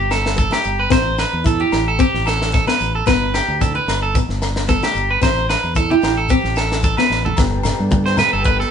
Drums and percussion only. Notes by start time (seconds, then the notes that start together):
0.11 snare, low agogo, shekere
0.26 snare
0.38 kick, shekere
0.52 snare, low agogo
0.64 shekere
0.91 kick, snare, low agogo, shekere
1.18 snare, low agogo, shekere
1.46 kick, shekere
1.72 snare, low agogo, shekere
1.99 kick, shekere
2.15 snare
2.26 snare, low agogo, shekere
2.42 snare
2.53 kick, snare, shekere
2.67 snare, low agogo, shekere
2.80 shekere
3.06 kick, snare, low agogo, shekere
3.34 snare, low agogo, shekere
3.49 shekere
3.61 kick, shekere
3.88 snare, low agogo, shekere
4.15 kick, shekere
4.30 snare
4.42 snare, low agogo, shekere
4.56 snare
4.69 kick, snare, shekere
4.83 snare, low agogo, shekere
4.96 shekere
5.22 kick, snare, low agogo, shekere
5.37 shekere
5.49 snare, low agogo, shekere
5.64 shekere
5.75 kick, shekere
5.90 shekere
6.02 snare, low agogo, shekere
6.29 kick, shekere
6.44 snare, shekere
6.56 snare, low agogo, shekere
6.70 snare, shekere
6.83 kick, shekere
6.97 snare, low agogo, shekere
7.11 snare
7.26 floor tom
7.37 kick, snare, low agogo, shekere
7.63 snare, low agogo, shekere
7.91 kick, high conga, shekere
8.07 snare
8.17 snare, high conga, low agogo, shekere
8.45 kick, muted conga, shekere
8.60 snare